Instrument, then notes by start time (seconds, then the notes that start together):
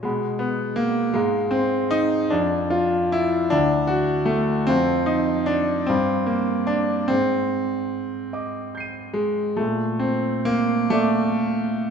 grand piano
0.03 B2 G#3 F#5 B5
0.39 B3
0.76 A#3
1.14 G#2 G#3 F5 A#5
1.51 C4
1.91 D#4
2.30 F2 D4 F5 A5
2.70 F4
3.12 E4
3.50 D2 D4 E5 A5
3.87 F#4
4.26 A3
4.67 F2 C4 F5 A5
5.06 D#4
5.46 D4
5.87 G2 C4 F5 D6
6.26 A#3
6.67 D4
7.08 G#2 C4
8.33 D#5 D6
8.75 G6 C7
8.80 D#7
9.14 G#3
9.57 A#2 A3
9.99 C4
10.45 A#3
10.90 A3 D5 D6